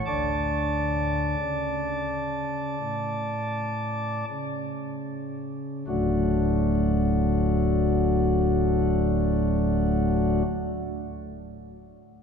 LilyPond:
<<
  \new Staff \with { instrumentName = "Pipe organ" } { \time 4/4 \key d \major \tempo 4 = 38 <d'' a'' d'''>2. r4 | <d, a, fis a d' fis'>1 | }
  \new Staff \with { instrumentName = "Pipe organ" } { \clef bass \time 4/4 \key d \major <d, d>4 cis4 a,4 cis4 | d,,1 | }
>>